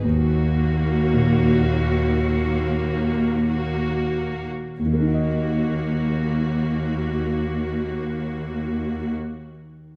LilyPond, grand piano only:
\new Staff \with { instrumentName = "Grand piano" } { \clef bass \time 4/4 \key ees \minor \tempo 4 = 46 ees,4 bes,2. | <ees, ees bes ees' ges' ees''>1 | }